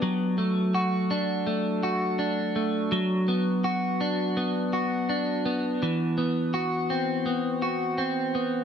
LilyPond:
\new Staff \with { instrumentName = "Clean electric guitar" } { \time 4/4 \key d \mixolydian \tempo 4 = 83 fis8 a8 fis'8 d'8 a8 fis'8 d'8 a8 | fis8 b8 fis'8 d'8 b8 fis'8 d'8 b8 | e8 b8 fis'8 c'8 b8 fis'8 c'8 b8 | }